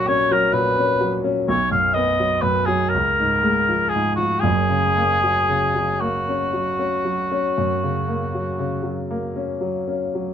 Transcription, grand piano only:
0, 0, Header, 1, 2, 480
1, 0, Start_track
1, 0, Key_signature, 6, "major"
1, 0, Tempo, 933126
1, 1246, Tempo, 990099
1, 1726, Tempo, 1041667
1, 2197, Time_signature, 12, 3, 24, 8
1, 3646, Tempo, 1022147
1, 4942, End_track
2, 0, Start_track
2, 0, Title_t, "Grand piano"
2, 0, Program_c, 0, 0
2, 0, Control_c, 0, 64, 127
2, 0, Note_on_c, 0, 34, 60
2, 0, Note_on_c, 0, 46, 48
2, 0, Note_on_c, 0, 54, 53
2, 0, Note_on_c, 0, 61, 49
2, 44, Note_off_c, 0, 61, 0
2, 44, Note_on_c, 0, 61, 59
2, 112, Note_off_c, 0, 54, 0
2, 160, Note_on_c, 0, 54, 57
2, 231, Note_off_c, 0, 61, 0
2, 273, Note_off_c, 0, 46, 0
2, 273, Note_on_c, 0, 46, 49
2, 349, Note_off_c, 0, 54, 0
2, 401, Note_on_c, 0, 61, 48
2, 466, Note_off_c, 0, 46, 0
2, 517, Note_on_c, 0, 54, 51
2, 591, Note_off_c, 0, 61, 0
2, 639, Note_on_c, 0, 61, 54
2, 710, Note_off_c, 0, 54, 0
2, 741, Note_off_c, 0, 34, 0
2, 758, Note_off_c, 0, 61, 0
2, 764, Note_on_c, 0, 35, 60
2, 766, Control_c, 0, 64, 0
2, 852, Control_c, 0, 64, 127
2, 882, Note_on_c, 0, 42, 46
2, 1008, Note_on_c, 0, 59, 49
2, 1074, Note_off_c, 0, 42, 0
2, 1130, Note_on_c, 0, 54, 41
2, 1200, Note_off_c, 0, 59, 0
2, 1249, Note_on_c, 0, 42, 49
2, 1321, Note_off_c, 0, 54, 0
2, 1370, Note_on_c, 0, 54, 46
2, 1439, Note_off_c, 0, 42, 0
2, 1468, Note_off_c, 0, 35, 0
2, 1488, Note_off_c, 0, 54, 0
2, 1495, Control_c, 0, 64, 0
2, 1498, Note_on_c, 0, 37, 50
2, 1587, Control_c, 0, 64, 127
2, 1620, Note_on_c, 0, 44, 40
2, 1734, Note_on_c, 0, 56, 50
2, 1802, Note_off_c, 0, 44, 0
2, 1852, Note_on_c, 0, 53, 39
2, 1915, Note_off_c, 0, 56, 0
2, 1972, Note_on_c, 0, 44, 41
2, 2034, Note_off_c, 0, 53, 0
2, 2081, Note_on_c, 0, 53, 40
2, 2156, Note_off_c, 0, 44, 0
2, 2185, Note_off_c, 0, 37, 0
2, 2195, Note_on_c, 0, 30, 55
2, 2198, Note_on_c, 0, 42, 56
2, 2200, Note_off_c, 0, 53, 0
2, 2205, Control_c, 0, 64, 0
2, 2295, Control_c, 0, 64, 127
2, 2316, Note_on_c, 0, 49, 43
2, 2442, Note_on_c, 0, 58, 42
2, 2514, Note_off_c, 0, 49, 0
2, 2565, Note_on_c, 0, 54, 40
2, 2637, Note_off_c, 0, 58, 0
2, 2682, Note_on_c, 0, 49, 36
2, 2759, Note_off_c, 0, 54, 0
2, 2804, Note_on_c, 0, 54, 44
2, 2877, Note_off_c, 0, 49, 0
2, 2922, Note_on_c, 0, 58, 45
2, 2997, Note_off_c, 0, 54, 0
2, 3050, Note_on_c, 0, 61, 41
2, 3116, Note_off_c, 0, 58, 0
2, 3165, Note_on_c, 0, 54, 36
2, 3240, Note_off_c, 0, 61, 0
2, 3284, Note_on_c, 0, 61, 44
2, 3358, Note_off_c, 0, 54, 0
2, 3402, Note_on_c, 0, 54, 42
2, 3477, Note_off_c, 0, 61, 0
2, 3524, Note_on_c, 0, 61, 44
2, 3595, Note_off_c, 0, 54, 0
2, 3625, Note_off_c, 0, 30, 0
2, 3627, Note_off_c, 0, 42, 0
2, 3646, Note_on_c, 0, 42, 42
2, 3715, Note_off_c, 0, 61, 0
2, 3767, Note_on_c, 0, 49, 41
2, 3881, Note_on_c, 0, 58, 40
2, 3954, Note_off_c, 0, 49, 0
2, 4005, Note_on_c, 0, 54, 38
2, 4069, Note_off_c, 0, 58, 0
2, 4121, Note_on_c, 0, 49, 39
2, 4190, Note_off_c, 0, 54, 0
2, 4233, Note_on_c, 0, 54, 40
2, 4307, Note_off_c, 0, 49, 0
2, 4363, Note_on_c, 0, 58, 42
2, 4423, Note_off_c, 0, 54, 0
2, 4483, Note_on_c, 0, 61, 41
2, 4549, Note_off_c, 0, 58, 0
2, 4599, Note_on_c, 0, 54, 41
2, 4672, Note_off_c, 0, 61, 0
2, 4725, Note_on_c, 0, 61, 36
2, 4794, Note_off_c, 0, 54, 0
2, 4852, Note_on_c, 0, 54, 37
2, 4920, Note_off_c, 0, 61, 0
2, 4942, Note_off_c, 0, 42, 0
2, 4942, Note_off_c, 0, 54, 0
2, 4942, End_track
0, 0, End_of_file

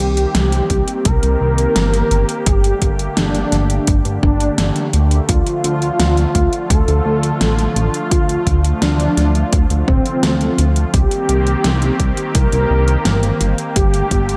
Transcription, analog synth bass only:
0, 0, Header, 1, 2, 480
1, 0, Start_track
1, 0, Key_signature, -2, "minor"
1, 0, Tempo, 705882
1, 1677, Time_signature, 4, 2, 24, 8
1, 9771, End_track
2, 0, Start_track
2, 0, Title_t, "Analog synth bass"
2, 0, Program_c, 0, 38
2, 0, Note_on_c, 0, 36, 94
2, 180, Note_off_c, 0, 36, 0
2, 238, Note_on_c, 0, 36, 97
2, 420, Note_off_c, 0, 36, 0
2, 477, Note_on_c, 0, 36, 85
2, 568, Note_off_c, 0, 36, 0
2, 716, Note_on_c, 0, 36, 92
2, 808, Note_off_c, 0, 36, 0
2, 836, Note_on_c, 0, 36, 94
2, 928, Note_off_c, 0, 36, 0
2, 957, Note_on_c, 0, 36, 84
2, 1139, Note_off_c, 0, 36, 0
2, 1196, Note_on_c, 0, 31, 82
2, 1379, Note_off_c, 0, 31, 0
2, 1436, Note_on_c, 0, 31, 88
2, 1528, Note_off_c, 0, 31, 0
2, 1676, Note_on_c, 0, 31, 93
2, 1859, Note_off_c, 0, 31, 0
2, 1917, Note_on_c, 0, 31, 90
2, 2099, Note_off_c, 0, 31, 0
2, 2157, Note_on_c, 0, 31, 89
2, 2339, Note_off_c, 0, 31, 0
2, 2397, Note_on_c, 0, 31, 77
2, 2579, Note_off_c, 0, 31, 0
2, 2637, Note_on_c, 0, 31, 88
2, 2728, Note_off_c, 0, 31, 0
2, 2756, Note_on_c, 0, 43, 91
2, 2848, Note_off_c, 0, 43, 0
2, 2877, Note_on_c, 0, 31, 99
2, 3059, Note_off_c, 0, 31, 0
2, 3115, Note_on_c, 0, 31, 80
2, 3207, Note_off_c, 0, 31, 0
2, 3356, Note_on_c, 0, 38, 96
2, 3539, Note_off_c, 0, 38, 0
2, 3597, Note_on_c, 0, 38, 96
2, 3688, Note_off_c, 0, 38, 0
2, 3836, Note_on_c, 0, 38, 94
2, 4019, Note_off_c, 0, 38, 0
2, 4076, Note_on_c, 0, 38, 99
2, 4259, Note_off_c, 0, 38, 0
2, 4317, Note_on_c, 0, 38, 85
2, 4408, Note_off_c, 0, 38, 0
2, 4557, Note_on_c, 0, 38, 94
2, 4648, Note_off_c, 0, 38, 0
2, 4678, Note_on_c, 0, 38, 97
2, 4769, Note_off_c, 0, 38, 0
2, 4798, Note_on_c, 0, 38, 81
2, 4980, Note_off_c, 0, 38, 0
2, 5038, Note_on_c, 0, 33, 83
2, 5220, Note_off_c, 0, 33, 0
2, 5277, Note_on_c, 0, 33, 86
2, 5368, Note_off_c, 0, 33, 0
2, 5517, Note_on_c, 0, 38, 97
2, 5700, Note_off_c, 0, 38, 0
2, 5758, Note_on_c, 0, 38, 89
2, 5940, Note_off_c, 0, 38, 0
2, 5997, Note_on_c, 0, 38, 93
2, 6180, Note_off_c, 0, 38, 0
2, 6238, Note_on_c, 0, 38, 77
2, 6420, Note_off_c, 0, 38, 0
2, 6479, Note_on_c, 0, 38, 102
2, 6569, Note_off_c, 0, 38, 0
2, 6596, Note_on_c, 0, 38, 88
2, 6688, Note_off_c, 0, 38, 0
2, 6718, Note_on_c, 0, 26, 85
2, 6809, Note_off_c, 0, 26, 0
2, 6956, Note_on_c, 0, 38, 90
2, 7139, Note_off_c, 0, 38, 0
2, 7197, Note_on_c, 0, 38, 83
2, 7379, Note_off_c, 0, 38, 0
2, 7438, Note_on_c, 0, 36, 101
2, 7528, Note_off_c, 0, 36, 0
2, 7677, Note_on_c, 0, 36, 93
2, 7859, Note_off_c, 0, 36, 0
2, 7917, Note_on_c, 0, 36, 96
2, 8099, Note_off_c, 0, 36, 0
2, 8158, Note_on_c, 0, 36, 82
2, 8249, Note_off_c, 0, 36, 0
2, 8398, Note_on_c, 0, 36, 95
2, 8489, Note_off_c, 0, 36, 0
2, 8517, Note_on_c, 0, 36, 95
2, 8608, Note_off_c, 0, 36, 0
2, 8637, Note_on_c, 0, 36, 85
2, 8820, Note_off_c, 0, 36, 0
2, 8876, Note_on_c, 0, 31, 80
2, 9059, Note_off_c, 0, 31, 0
2, 9118, Note_on_c, 0, 31, 87
2, 9208, Note_off_c, 0, 31, 0
2, 9358, Note_on_c, 0, 31, 95
2, 9540, Note_off_c, 0, 31, 0
2, 9597, Note_on_c, 0, 31, 90
2, 9771, Note_off_c, 0, 31, 0
2, 9771, End_track
0, 0, End_of_file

